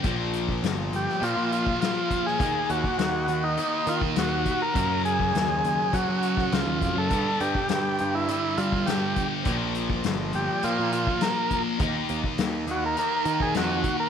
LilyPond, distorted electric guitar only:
\new Staff \with { instrumentName = "Distorted electric guitar" } { \clef bass \time 4/4 \key bes \lydian \tempo 4 = 102 <bes, f bes>2 <bes, f bes>2 | <ees bes ees'>2 <ees bes ees'>2 | <fis, cis fis>2 <fis, cis fis>2 | <g, d g>2 <g, d g>2 |
<bes, f bes>2 <bes, f bes>2 | <ees bes ees'>2 <ees bes ees'>2 | }